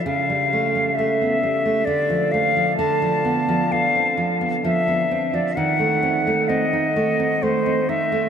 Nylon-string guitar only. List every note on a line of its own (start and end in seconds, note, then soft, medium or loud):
0.06 1.83 C#3 soft
0.30 0.66 G3 soft
0.53 0.89 A3 soft
0.75 1.11 G3 soft
0.99 1.34 A3 soft
1.22 1.43 B3 soft
1.43 1.78 G3 soft
1.65 1.87 A3 soft
1.87 2.76 D3 soft
2.10 2.47 F3 soft
2.34 2.70 A3 soft
2.57 2.79 F3 soft
2.79 5.54 D3 medium
3.02 3.39 F3 soft
3.25 3.62 B3 soft
3.49 3.86 F3 soft
3.72 4.09 B3 soft
3.95 4.18 C4 soft
4.17 4.55 F3 soft
4.41 4.78 B3 soft
4.64 5.02 F3 soft
4.88 5.25 B3 soft
5.11 5.35 C4 soft
5.33 5.57 F3 soft
5.57 8.29 D#3 medium
5.80 6.17 A3 soft
6.03 6.40 C4 soft
6.27 6.64 A3 soft
6.49 6.87 C4 medium
6.73 6.97 D#4 soft
6.96 7.34 A3 soft
7.20 7.57 C4 soft
7.43 7.80 A3 soft
7.66 8.03 C4 soft
7.89 8.12 D#4 soft
8.12 8.29 A3 soft